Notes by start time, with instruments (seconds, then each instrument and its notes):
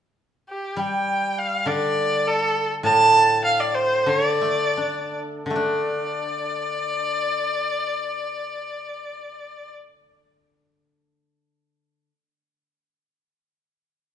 0.50 erhu G4
0.76 guzheng G3, erhu G5
1.39 erhu F5
1.66 guzheng D3, erhu D5
2.28 erhu A4
2.83 guzheng A2, erhu A5
3.45 erhu F5
3.60 erhu D5
3.75 erhu C5
4.06 guzheng D3, erhu C#5
4.27 erhu D5
4.41 guzheng A3
4.77 guzheng D4
5.46 guzheng D3
5.50 guzheng A3
5.56 guzheng D4, erhu D5